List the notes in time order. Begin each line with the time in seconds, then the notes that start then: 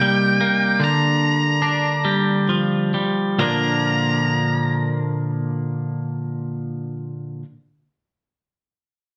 Already playing: C3 A#3 D#4 G5
0.01 G3
0.41 A#3
0.79 D3 G3 A#3 D4
0.84 A#5
1.62 D4
2.05 G3
2.49 F3
2.94 G3
3.38 A#2 D3 F3 A#3 D4 A#4 D5 A#5